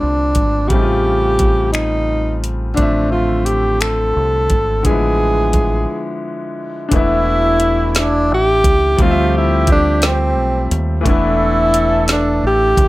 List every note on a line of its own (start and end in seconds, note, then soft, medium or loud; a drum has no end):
0.00 0.33 C2 medium
0.00 0.66 D3 medium
0.00 0.66 G3 soft
0.00 0.67 A3 soft
0.00 0.69 C4 soft
0.00 0.70 D4 medium
0.00 0.69 F4 medium
0.35 0.67 G#1 medium
0.35 kick medium
0.35 closed hi-hat medium
0.68 2.74 A1 medium
0.68 2.72 C#3 medium
0.68 2.73 G3 medium
0.68 2.74 A3 soft
0.68 1.72 G4 loud
0.68 kick loud
0.68 closed hi-hat medium
0.74 2.75 C4 soft
0.74 0.80 D#4 soft
0.82 2.79 F4 medium
1.39 kick medium
1.39 closed hi-hat medium
1.73 2.46 D#4 medium
1.73 finger snap medium
1.73 closed hi-hat medium
2.44 closed hi-hat medium
2.74 4.79 D3 medium
2.74 4.80 F3 soft
2.74 4.81 A3 medium
2.74 3.09 D4 medium
2.74 kick loud
2.74 closed hi-hat medium
2.79 4.12 A1 medium
2.79 4.82 C4 medium
2.79 4.83 E5 medium
3.12 3.47 F4 medium
3.46 3.82 G4 medium
3.46 closed hi-hat medium
3.81 4.84 A4 loud
3.81 finger snap medium
3.81 closed hi-hat medium
4.17 4.47 C2 medium
4.50 4.81 G#1 medium
4.50 kick medium
4.50 closed hi-hat medium
4.83 5.85 A1 loud
4.83 6.87 D3 medium
4.83 6.87 F3 medium
4.83 6.88 G#3 medium
4.83 6.19 G#4 loud
4.83 kick medium
4.83 closed hi-hat medium
4.89 6.89 B3 medium
4.89 6.90 E4 medium
5.53 kick medium
5.53 closed hi-hat medium
6.89 8.60 B2 medium
6.89 8.94 E3 medium
6.89 8.60 A3 medium
6.89 8.95 A3 medium
6.89 8.93 D4 medium
6.89 8.60 E4 medium
6.89 kick loud
6.89 closed hi-hat medium
6.93 8.31 E1 loud
6.93 8.96 B3 medium
6.93 7.90 E4 loud
6.93 8.96 E4 medium
7.60 closed hi-hat medium
7.90 8.01 E4 medium
7.95 snare loud
7.95 closed hi-hat medium
7.99 8.32 D4 loud
8.31 8.61 A1 medium
8.31 9.04 G4 loud
8.64 8.96 C#2 medium
8.64 kick loud
8.64 closed hi-hat medium
8.97 10.38 D2 loud
8.97 11.00 F3 medium
8.97 10.67 F3 medium
8.97 11.01 G3 medium
8.97 11.02 A3 medium
8.97 10.67 C4 medium
8.97 10.67 G4 medium
8.97 kick loud
8.97 closed hi-hat medium
9.02 11.03 C4 medium
9.02 9.08 D#4 medium
9.02 9.35 F4 loud
9.11 11.07 E5 medium
9.38 9.67 E4 medium
9.67 kick medium
9.67 closed hi-hat medium
9.72 10.02 D4 loud
10.02 snare loud
10.02 closed hi-hat medium
10.07 10.78 C4 loud
10.38 10.68 B1 loud
10.71 11.02 D#2 loud
10.71 closed hi-hat medium
11.01 12.88 E3 medium
11.01 12.88 A3 medium
11.05 12.40 E1 medium
11.05 12.74 E3 medium
11.05 12.88 B3 medium
11.05 12.74 D4 medium
11.05 12.88 D4 medium
11.05 12.74 A4 medium
11.05 kick loud
11.05 closed hi-hat medium
11.09 12.88 E4 medium
11.09 12.07 E4 loud
11.74 closed hi-hat medium
12.08 snare loud
12.08 closed hi-hat medium
12.12 12.43 D4 medium
12.43 12.74 A1 medium
12.43 12.88 G4 loud
12.77 12.88 C#2 loud
12.77 kick loud
12.77 closed hi-hat medium